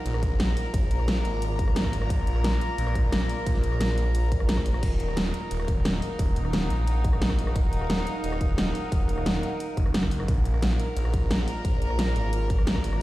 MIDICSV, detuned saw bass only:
0, 0, Header, 1, 2, 480
1, 0, Start_track
1, 0, Key_signature, -6, "minor"
1, 0, Tempo, 340909
1, 1039, Time_signature, 4, 2, 24, 8
1, 18335, End_track
2, 0, Start_track
2, 0, Title_t, "Detuned saw bass"
2, 0, Program_c, 0, 39
2, 79, Note_on_c, 0, 34, 97
2, 780, Note_off_c, 0, 34, 0
2, 1039, Note_on_c, 0, 34, 97
2, 1740, Note_off_c, 0, 34, 0
2, 1759, Note_on_c, 0, 32, 96
2, 2940, Note_off_c, 0, 32, 0
2, 2959, Note_on_c, 0, 34, 96
2, 3660, Note_off_c, 0, 34, 0
2, 3920, Note_on_c, 0, 34, 96
2, 4621, Note_off_c, 0, 34, 0
2, 4879, Note_on_c, 0, 34, 95
2, 5580, Note_off_c, 0, 34, 0
2, 5599, Note_on_c, 0, 34, 98
2, 6780, Note_off_c, 0, 34, 0
2, 6798, Note_on_c, 0, 27, 97
2, 7500, Note_off_c, 0, 27, 0
2, 7759, Note_on_c, 0, 27, 94
2, 8460, Note_off_c, 0, 27, 0
2, 8719, Note_on_c, 0, 27, 97
2, 9420, Note_off_c, 0, 27, 0
2, 9439, Note_on_c, 0, 34, 97
2, 10620, Note_off_c, 0, 34, 0
2, 10639, Note_on_c, 0, 27, 98
2, 11340, Note_off_c, 0, 27, 0
2, 11599, Note_on_c, 0, 27, 95
2, 12300, Note_off_c, 0, 27, 0
2, 12559, Note_on_c, 0, 27, 97
2, 13260, Note_off_c, 0, 27, 0
2, 13759, Note_on_c, 0, 30, 92
2, 14460, Note_off_c, 0, 30, 0
2, 14479, Note_on_c, 0, 34, 100
2, 15180, Note_off_c, 0, 34, 0
2, 15439, Note_on_c, 0, 34, 94
2, 16140, Note_off_c, 0, 34, 0
2, 16399, Note_on_c, 0, 34, 99
2, 17100, Note_off_c, 0, 34, 0
2, 17120, Note_on_c, 0, 32, 96
2, 18300, Note_off_c, 0, 32, 0
2, 18335, End_track
0, 0, End_of_file